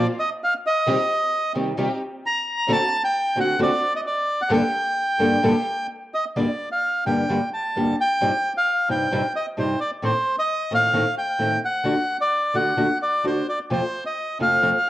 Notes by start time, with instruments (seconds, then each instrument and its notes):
Already playing: string section A#3 C4 F4
0.19 bandoneon D#5
0.44 bandoneon F5
0.67 bandoneon D#5
0.86 nylon-string guitar C3 D#3 G3 C4 G4, string section C4 D#4 G4
1.54 nylon-string guitar C3 D#3 G3 C4 G4, string section C4 D#4 G4
1.77 nylon-string guitar C3 D#3 G3 C4 G4, string section C4 D#4 G4
2.26 bandoneon A#5
2.67 nylon-string guitar D3 A3 C4 F#4, string section C4 D4 F#4
2.72 bandoneon A5
3.04 bandoneon G5
3.36 nylon-string guitar D3 A3 C4 F#4, string section C4 D4 F#4
3.40 bandoneon F#5
3.58 nylon-string guitar D3 A3 C4 F#4, string section C4 D4 F#4
3.63 bandoneon D5
3.96 bandoneon D#5
4.07 bandoneon D5
4.41 bandoneon F#5
4.49 nylon-string guitar G2 D3 G3 A#3 D4 A4, string section A#3 G4 A4, bandoneon G5
5.18 nylon-string guitar G2 D3 G3 A#3 D4 A4, string section A#3 G4 A4
5.42 nylon-string guitar G2 D3 G3 A#3 D4 A4, string section A#3 G4 A4
6.14 bandoneon D#5
6.36 nylon-string guitar G2 D3 G3 A#3 D4 G4, bandoneon D5
6.72 bandoneon F5
7.06 nylon-string guitar G2 D3 G3 A#3 D4 G4, bandoneon G5
7.29 nylon-string guitar G2 D3 G3 A#3 D4 G4
7.54 bandoneon A5
7.76 nylon-string guitar G2 D3 G3 A#3 D4 G4
8.01 bandoneon G5
8.21 nylon-string guitar G2 C3 G3 C4 D#4 G4
8.57 bandoneon F5
8.89 nylon-string guitar G2 C3 G3 C4 D#4 G4, bandoneon G5
9.11 nylon-string guitar G2 C3 G3 C4 D#4 G4
9.36 bandoneon D#5
9.57 nylon-string guitar G2 C3 G3 C4 D#4 G4, bandoneon C5
9.80 bandoneon D5
10.02 nylon-string guitar A2 D#3 A3 C4, bandoneon C5
10.39 bandoneon D#5
10.71 nylon-string guitar A2 D#3 A3 C4, bandoneon F5
10.93 nylon-string guitar A2 D#3 A3 C4
11.18 bandoneon G5
11.39 nylon-string guitar A2 D#3 A3 C4
11.65 bandoneon F#5
11.84 nylon-string guitar D3 A3 D4 F#4
12.21 bandoneon D5
12.54 nylon-string guitar D3 A3 D4 F#4, bandoneon F#5
12.77 nylon-string guitar D3 A3 D4 F#4
13.03 bandoneon D5
13.24 nylon-string guitar D3 A3 D4 F#4, bandoneon C5
13.49 bandoneon D5
13.70 nylon-string guitar F2 C3 F3 A3 C4 F4, bandoneon C5
14.06 bandoneon D#5
14.39 nylon-string guitar F2 C3 F3 A3 C4 F4, bandoneon F5
14.62 nylon-string guitar F2 C3 F3 A3 C4 F4